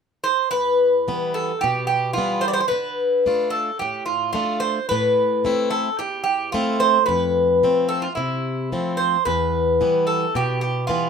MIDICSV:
0, 0, Header, 1, 3, 480
1, 0, Start_track
1, 0, Tempo, 546448
1, 460, Time_signature, 4, 2, 24, 8
1, 9747, End_track
2, 0, Start_track
2, 0, Title_t, "Bouzouki"
2, 0, Program_c, 0, 25
2, 207, Note_on_c, 0, 72, 89
2, 442, Note_off_c, 0, 72, 0
2, 446, Note_on_c, 0, 71, 91
2, 1138, Note_off_c, 0, 71, 0
2, 1179, Note_on_c, 0, 69, 74
2, 1403, Note_off_c, 0, 69, 0
2, 1413, Note_on_c, 0, 67, 79
2, 1631, Note_off_c, 0, 67, 0
2, 1642, Note_on_c, 0, 67, 74
2, 1871, Note_off_c, 0, 67, 0
2, 1874, Note_on_c, 0, 65, 78
2, 2117, Note_on_c, 0, 72, 89
2, 2136, Note_off_c, 0, 65, 0
2, 2174, Note_off_c, 0, 72, 0
2, 2178, Note_on_c, 0, 74, 74
2, 2222, Note_off_c, 0, 74, 0
2, 2226, Note_on_c, 0, 72, 85
2, 2277, Note_off_c, 0, 72, 0
2, 2288, Note_on_c, 0, 72, 66
2, 2350, Note_off_c, 0, 72, 0
2, 2354, Note_on_c, 0, 71, 81
2, 3075, Note_off_c, 0, 71, 0
2, 3078, Note_on_c, 0, 69, 77
2, 3312, Note_off_c, 0, 69, 0
2, 3332, Note_on_c, 0, 67, 74
2, 3560, Note_off_c, 0, 67, 0
2, 3563, Note_on_c, 0, 65, 71
2, 3790, Note_off_c, 0, 65, 0
2, 3800, Note_on_c, 0, 65, 81
2, 4033, Note_off_c, 0, 65, 0
2, 4040, Note_on_c, 0, 72, 91
2, 4290, Note_off_c, 0, 72, 0
2, 4294, Note_on_c, 0, 71, 82
2, 4983, Note_off_c, 0, 71, 0
2, 5011, Note_on_c, 0, 69, 83
2, 5239, Note_off_c, 0, 69, 0
2, 5259, Note_on_c, 0, 67, 77
2, 5467, Note_off_c, 0, 67, 0
2, 5478, Note_on_c, 0, 67, 75
2, 5712, Note_off_c, 0, 67, 0
2, 5728, Note_on_c, 0, 65, 76
2, 5958, Note_off_c, 0, 65, 0
2, 5972, Note_on_c, 0, 72, 88
2, 6196, Note_off_c, 0, 72, 0
2, 6199, Note_on_c, 0, 71, 82
2, 6923, Note_off_c, 0, 71, 0
2, 6927, Note_on_c, 0, 69, 75
2, 7045, Note_off_c, 0, 69, 0
2, 7045, Note_on_c, 0, 65, 71
2, 7156, Note_off_c, 0, 65, 0
2, 7160, Note_on_c, 0, 64, 63
2, 7855, Note_off_c, 0, 64, 0
2, 7880, Note_on_c, 0, 72, 76
2, 8112, Note_off_c, 0, 72, 0
2, 8129, Note_on_c, 0, 71, 79
2, 8819, Note_off_c, 0, 71, 0
2, 8843, Note_on_c, 0, 69, 71
2, 9073, Note_off_c, 0, 69, 0
2, 9103, Note_on_c, 0, 67, 72
2, 9311, Note_off_c, 0, 67, 0
2, 9321, Note_on_c, 0, 67, 68
2, 9545, Note_off_c, 0, 67, 0
2, 9549, Note_on_c, 0, 65, 78
2, 9747, Note_off_c, 0, 65, 0
2, 9747, End_track
3, 0, Start_track
3, 0, Title_t, "Steel-string acoustic guitar"
3, 0, Program_c, 1, 25
3, 464, Note_on_c, 1, 40, 59
3, 928, Note_off_c, 1, 40, 0
3, 947, Note_on_c, 1, 52, 41
3, 952, Note_on_c, 1, 55, 33
3, 953, Note_on_c, 1, 59, 46
3, 1329, Note_off_c, 1, 52, 0
3, 1330, Note_off_c, 1, 55, 0
3, 1332, Note_off_c, 1, 59, 0
3, 1438, Note_on_c, 1, 47, 63
3, 1896, Note_off_c, 1, 47, 0
3, 1904, Note_on_c, 1, 52, 39
3, 1909, Note_on_c, 1, 55, 36
3, 1914, Note_on_c, 1, 59, 39
3, 2287, Note_off_c, 1, 52, 0
3, 2291, Note_off_c, 1, 55, 0
3, 2292, Note_off_c, 1, 59, 0
3, 2384, Note_on_c, 1, 50, 62
3, 2848, Note_off_c, 1, 50, 0
3, 2864, Note_on_c, 1, 57, 40
3, 2868, Note_on_c, 1, 62, 37
3, 2877, Note_on_c, 1, 65, 39
3, 3247, Note_off_c, 1, 57, 0
3, 3251, Note_off_c, 1, 62, 0
3, 3253, Note_off_c, 1, 65, 0
3, 3352, Note_on_c, 1, 45, 58
3, 3813, Note_off_c, 1, 45, 0
3, 3815, Note_on_c, 1, 57, 41
3, 3825, Note_on_c, 1, 62, 36
3, 3830, Note_on_c, 1, 65, 40
3, 4204, Note_off_c, 1, 57, 0
3, 4205, Note_off_c, 1, 65, 0
3, 4206, Note_off_c, 1, 62, 0
3, 4315, Note_on_c, 1, 45, 62
3, 4774, Note_off_c, 1, 45, 0
3, 4785, Note_on_c, 1, 57, 39
3, 4793, Note_on_c, 1, 60, 39
3, 4796, Note_on_c, 1, 64, 40
3, 5168, Note_off_c, 1, 57, 0
3, 5173, Note_off_c, 1, 60, 0
3, 5173, Note_off_c, 1, 64, 0
3, 5267, Note_on_c, 1, 40, 65
3, 5730, Note_off_c, 1, 40, 0
3, 5746, Note_on_c, 1, 57, 43
3, 5750, Note_on_c, 1, 60, 38
3, 5758, Note_on_c, 1, 64, 45
3, 6128, Note_off_c, 1, 57, 0
3, 6131, Note_off_c, 1, 60, 0
3, 6135, Note_off_c, 1, 64, 0
3, 6224, Note_on_c, 1, 41, 60
3, 6688, Note_off_c, 1, 41, 0
3, 6705, Note_on_c, 1, 53, 41
3, 6709, Note_on_c, 1, 57, 32
3, 6712, Note_on_c, 1, 60, 41
3, 7088, Note_off_c, 1, 53, 0
3, 7088, Note_off_c, 1, 57, 0
3, 7092, Note_off_c, 1, 60, 0
3, 7178, Note_on_c, 1, 48, 58
3, 7645, Note_off_c, 1, 48, 0
3, 7664, Note_on_c, 1, 53, 39
3, 7668, Note_on_c, 1, 57, 31
3, 7669, Note_on_c, 1, 60, 43
3, 8047, Note_off_c, 1, 53, 0
3, 8047, Note_off_c, 1, 57, 0
3, 8049, Note_off_c, 1, 60, 0
3, 8141, Note_on_c, 1, 40, 60
3, 8606, Note_off_c, 1, 40, 0
3, 8616, Note_on_c, 1, 52, 38
3, 8622, Note_on_c, 1, 59, 44
3, 8623, Note_on_c, 1, 55, 33
3, 9002, Note_off_c, 1, 52, 0
3, 9003, Note_off_c, 1, 55, 0
3, 9005, Note_off_c, 1, 59, 0
3, 9094, Note_on_c, 1, 47, 61
3, 9562, Note_off_c, 1, 47, 0
3, 9568, Note_on_c, 1, 52, 42
3, 9572, Note_on_c, 1, 55, 39
3, 9579, Note_on_c, 1, 59, 47
3, 9747, Note_off_c, 1, 52, 0
3, 9747, Note_off_c, 1, 55, 0
3, 9747, Note_off_c, 1, 59, 0
3, 9747, End_track
0, 0, End_of_file